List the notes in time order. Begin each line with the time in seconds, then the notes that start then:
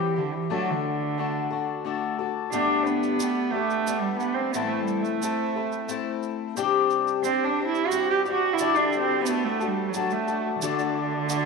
Already playing: E3 G3 C4 E4 G4
0.16 D3 C4 E4 G4
0.34 E3
0.50 D3 F#3 A3 D4 F#4 A4
0.70 D3
1.18 A3 D4 F#4 A4
1.50 D4 F#4 A4
1.84 A3 D4 F#4 A4
2.19 D4 F#4 A4
2.52 G2 D3 A3 B3 D4 G4, shaker
2.85 B3, shaker
3.03 shaker
3.20 A3 B3 D4 G4, shaker
3.51 A3 D4 G4
3.55 A3 B3
3.70 shaker
3.86 A3 B3 D4 G4, shaker
4.00 G3
4.17 B3, shaker
4.34 C4
4.52 A2 E3 A3 B3, shaker
4.56 C4 E4 A4
4.67 A3
4.83 G3
4.88 shaker
5.01 A3, shaker
5.21 A3 C4 E4 A4, shaker
5.56 A3 C4 E4 A4
5.72 shaker
5.88 A3 C4 E4 A4, shaker
6.23 shaker
6.56 C3 G3 C4 D4 G4, shaker
6.90 shaker
7.07 shaker
7.23 G3 C4 D4, shaker
7.27 G4
7.45 D4
7.59 C4 D4 G4
7.66 E4
7.75 shaker
7.87 G3 F#4, shaker
7.92 C4 D4 G4
8.10 G4
8.25 C4 D4 G4, shaker
8.32 F#4
8.53 E4
8.58 D3 G3 D4 G4 A4, shaker
8.75 D4, shaker
8.93 shaker
8.98 C4
9.22 B3
9.26 A3 D4 F#4 A4, shaker
9.45 A3
9.60 D4 F#4 A4, shaker
9.66 G3
9.89 F#3
9.94 A3 D4 F#4 A4, shaker
10.10 A3, shaker
10.28 D4 F#4 A4, shaker
10.60 D3 A3 D4 F#4 D5, shaker
10.64 F#4 A4
10.79 shaker
11.29 A3 D4 F#4 A4, shaker